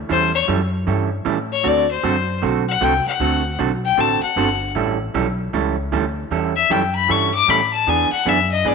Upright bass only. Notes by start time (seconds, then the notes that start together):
0.10 E2
0.48 F#2
0.87 G2
1.26 A2
1.65 D2
2.04 F#2
2.43 B1
2.81 C2
3.06 muted upright bass stroke
3.20 D2
3.59 B1
3.97 A1
4.22 muted upright bass stroke
4.36 G1
4.75 A1
5.14 B1
5.53 C#2
5.92 D2
6.31 E2
6.70 F#2
7.09 G2
7.48 A2
7.87 E2
8.11 muted upright bass stroke
8.25 F#2
8.65 G#2